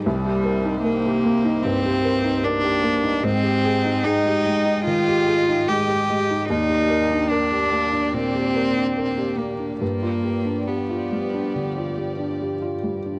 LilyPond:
<<
  \new Staff \with { instrumentName = "String section" } { \time 4/4 \key c \minor \tempo 4 = 73 <bes g' c''>1 | <aes ees'' g''>1 | <bes g' d''>1 | <f g' d''>1 | }
  \new Staff \with { instrumentName = "Felt piano" } { \time 4/4 \key c \minor c,16 g'16 bes'16 ees'16 bes'16 g'16 bes16 ees'16 g,16 g'16 bes'16 ees'16 bes'16 g'16 bes16 ees'16 | aes,16 g'16 aes'16 ees'16 aes'16 g'16 aes16 ees'16 ees16 g'16 aes'16 ees'16 aes16 g'16 aes16 ees'16 | ees,16 g'16 bes'16 d'16 bes'16 g'16 bes16 d'16 bes,16 g'16 bes'16 d'16 bes'16 g'16 bes16 d'16 | g,16 f'16 g'16 d'16 g'16 f'16 g16 d'16 d16 f'16 g'16 d'16 g'16 f'16 g16 d'16 | }
  \new Staff \with { instrumentName = "Cello" } { \time 4/4 \key c \minor g4 bes4 c'4 d'4 | c'4 ees'4 f'4 g'4 | ees'4 d'4 c'4. bes8 | bes4 b2 r4 | }
>>